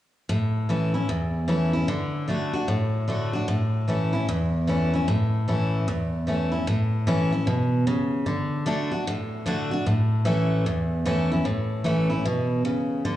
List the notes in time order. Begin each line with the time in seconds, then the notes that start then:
0.29 A2
0.69 E3 A3 C#4 E4
0.94 C#4 E4
1.09 E2
1.48 E3 A3 C#4 E4
1.73 C#4 E4
1.88 D3
2.28 D3 A3 D4 F#4
2.53 D4 F#4
2.68 A2
3.08 D3 A3 D4 F#4
3.33 D4 F#4
3.48 A2
3.88 E3 A3 C#4 E4
4.13 C#4 E4
4.29 E2
4.67 E3 A3 C#4 E4
4.94 C#4 E4
5.08 A2
5.48 E3 A3 C#4 E4
5.88 E2
6.27 E3 A3 C#4 E4
6.52 C#4 E4
6.67 A2
7.07 E3 A3 C#4 E4
7.32 C#4 E4
7.47 B2
7.87 C#3
8.26 D3
8.66 D3 A3 D4 F#4
8.91 D4 F#4
9.07 A2
9.46 D3 A3 D4 F#4
9.71 D4 F#4
9.86 A2
10.25 E3 A3 C#4 E4
10.66 E2
11.05 E3 A3 C#4 E4
11.32 C#4 E4
11.45 A2
11.84 E3 A3 C#4 E4
12.10 C#4 E4
12.25 B2
12.65 C#3
13.05 D3